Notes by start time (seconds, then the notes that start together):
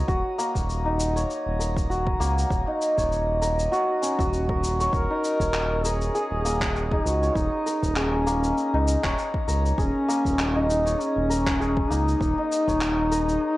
Already playing: A#3 D#4 A#4 C#5
0.08 D#1 F#4, kick, cabasa
0.38 A#3, cabasa
0.55 D#1, kick, cabasa
0.70 cabasa
0.85 D#4
1.00 cabasa
1.16 C#5, cabasa
1.30 cabasa
1.47 D#1
1.59 A#4, cabasa
1.77 kick, cabasa
1.90 F#4, cabasa
2.07 kick
2.20 C#2 A#3, cabasa
2.38 cabasa
2.51 D#1, kick, cabasa
2.67 D#4
2.82 cabasa
2.97 D#1 C#5, kick, cabasa
3.12 cabasa
3.42 A#4, cabasa
3.59 cabasa
3.72 F#4, cabasa
4.02 C#4, cabasa
4.19 D#1 F#4, kick, cabasa
4.33 cabasa
4.49 A#4, kick
4.64 cabasa
4.80 C#5, cabasa
4.92 D#1 A#4, kick, cabasa
5.10 D#4
5.24 cabasa
5.40 D#1 C#5, kick, cabasa
5.54 clap, cabasa
5.84 G#4 A#4, cabasa
6.01 cabasa
6.15 G#4, cabasa
6.31 D#1
6.45 A#3, cabasa
6.61 kick, clap, cabasa
6.76 cabasa
6.92 D#4, kick
7.05 C#2 F#4, cabasa
7.23 C#5, cabasa
7.36 D#1 D#4, kick, cabasa
7.66 A#4, cabasa
7.83 D#1, kick, cabasa
7.96 C#4 G#4, clap, cabasa
8.27 A#3, cabasa
8.44 cabasa
8.58 cabasa
8.74 C#2 D#4
8.88 cabasa
9.04 D#1 C#5, kick, clap, cabasa
9.18 cabasa
9.34 kick
9.48 C#2 A#4, cabasa
9.66 cabasa
9.78 D#1 C#4 G#4, kick, cabasa
10.08 A#3, cabasa
10.25 D#1, kick, cabasa
10.39 clap, cabasa
10.55 D#4
10.69 D#4, cabasa
10.86 C#5, cabasa
11.00 C#4, cabasa
11.16 D#1
11.30 A#4, cabasa
11.46 kick, clap, cabasa
11.60 G#4, cabasa
11.77 kick
11.90 C#2 A#3 D#4, cabasa
12.08 cabasa
12.21 D#1, kick, cabasa
12.38 D#4
12.52 cabasa
12.68 D#1 C#5, kick, cabasa
12.81 clap, cabasa
13.11 A#4, cabasa
13.29 cabasa